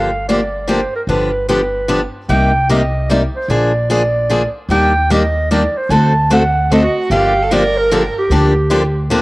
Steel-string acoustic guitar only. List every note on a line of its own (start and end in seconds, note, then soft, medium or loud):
0.29 0.39 D3 medium
0.29 0.39 F3 medium
0.29 0.40 A#3 medium
0.29 0.40 D4 medium
0.29 0.40 G4 medium
0.68 0.79 D3 medium
0.68 0.79 F3 medium
0.68 0.79 A#3 medium
0.68 0.80 D4 medium
0.68 0.80 G4 medium
1.09 1.30 D3 medium
1.09 1.30 F3 medium
1.09 1.30 B3 medium
1.09 1.30 D4 medium
1.09 1.30 G4 medium
1.49 1.60 D3 medium
1.49 1.60 F3 medium
1.49 1.60 B3 medium
1.49 1.60 D4 medium
1.49 1.60 G4 medium
1.88 2.00 D3 medium
1.88 2.00 F3 medium
1.88 2.00 B3 medium
1.88 2.00 D4 medium
1.88 2.00 G4 medium
2.29 2.50 C3 medium
2.29 2.50 G3 medium
2.29 2.51 A#3 medium
2.29 2.51 D#4 medium
2.29 2.51 G4 medium
2.69 2.80 C3 medium
2.69 2.81 G3 medium
2.69 2.81 A#3 medium
2.69 2.81 D#4 medium
2.69 2.81 G4 medium
3.10 3.21 C3 medium
3.10 3.21 G3 medium
3.10 3.21 A#3 medium
3.10 3.21 D#4 medium
3.10 3.21 G4 medium
3.50 3.71 D3 medium
3.50 3.71 F3 medium
3.50 3.71 A#3 medium
3.50 3.71 D4 medium
3.50 3.71 G#4 medium
3.90 4.01 D3 medium
3.90 4.01 F3 medium
3.90 4.01 A#3 medium
3.90 4.01 D4 medium
3.90 4.01 G#4 medium
4.29 4.41 D3 medium
4.29 4.41 F3 medium
4.29 4.41 A#3 medium
4.29 4.41 D4 medium
4.29 4.42 G#4 medium
4.70 4.91 D#3 medium
4.70 4.92 G3 medium
4.70 4.92 A#3 medium
4.70 4.92 D4 medium
4.70 4.92 G4 medium
5.10 5.21 D#3 medium
5.10 5.21 G3 medium
5.10 5.22 A#3 medium
5.10 5.22 D4 medium
5.10 5.22 G4 medium
5.51 5.62 D#3 medium
5.51 5.62 G3 medium
5.51 5.62 A#3 medium
5.51 5.62 D4 medium
5.51 5.62 G4 medium
5.90 6.12 D3 medium
5.90 6.12 A3 medium
5.90 6.12 C4 medium
5.90 6.12 F#4 medium
5.90 6.12 A4 medium
6.30 6.41 D3 medium
6.30 6.42 A3 medium
6.30 6.42 C4 medium
6.30 6.42 F#4 medium
6.30 6.42 A4 medium
6.71 6.82 D3 medium
6.71 6.82 A3 medium
6.71 6.82 C4 medium
6.71 6.82 F#4 medium
6.71 6.82 A4 medium
7.11 7.32 D3 medium
7.11 7.32 F3 medium
7.11 7.32 A#3 medium
7.11 7.32 D4 medium
7.11 7.33 G4 medium
7.51 7.62 D3 medium
7.51 7.62 F3 medium
7.51 7.62 A#3 medium
7.51 7.62 D4 medium
7.51 7.63 G4 medium
7.91 8.02 D3 medium
7.91 8.02 F3 medium
7.91 8.02 A#3 medium
7.91 8.03 D4 medium
7.91 8.03 G4 medium
8.31 8.52 D3 medium
8.31 8.52 F3 medium
8.31 8.52 A#3 medium
8.31 8.52 D4 medium
8.31 8.53 G4 medium
8.70 8.81 D3 medium
8.70 8.82 F3 medium
8.70 8.82 A#3 medium
8.70 8.82 D4 loud
8.70 8.82 G4 medium
9.10 9.22 D3 medium
9.10 9.22 F3 medium
9.10 9.22 A#3 medium
9.10 9.22 D4 medium
9.10 9.22 G4 medium